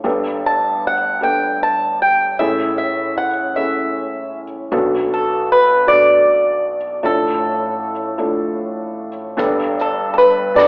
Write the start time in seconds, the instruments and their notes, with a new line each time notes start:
0.04 felt piano G1 G2 G3 B3 D4 A4, upright bass G1
0.46 steel-string acoustic guitar A5
0.87 steel-string acoustic guitar F#5
1.21 felt piano G3 B3 D4 A4, steel-string acoustic guitar G5
1.63 steel-string acoustic guitar A5
2.02 steel-string acoustic guitar G5
2.39 felt piano A1 A2 C#4 E4 G#4 A4, upright bass A1, steel-string acoustic guitar E5
2.78 steel-string acoustic guitar E5
3.18 steel-string acoustic guitar F#5
3.56 felt piano C#4 E4 G#4 A4, steel-string acoustic guitar E5
4.71 upright bass B1, felt piano B1 B2 F#3 B3 D4 A4
5.14 steel-string acoustic guitar A4
5.52 steel-string acoustic guitar B4
5.87 felt piano F#3 B3 D4 A4, steel-string acoustic guitar D5
7.03 felt piano A1 A2 F3 A3 D4 A4, upright bass A1, steel-string acoustic guitar A4
8.18 felt piano F3 A3 D4 A4
9.37 felt piano G1 G2 G3 B3 D4 A4, upright bass G1, kick, closed hi-hat
9.79 steel-string acoustic guitar A4, closed hi-hat
10.14 steel-string acoustic guitar A4
10.18 steel-string acoustic guitar B4, closed hi-hat
10.55 felt piano G3 B3 D4 A4, steel-string acoustic guitar D5, cross-stick, closed hi-hat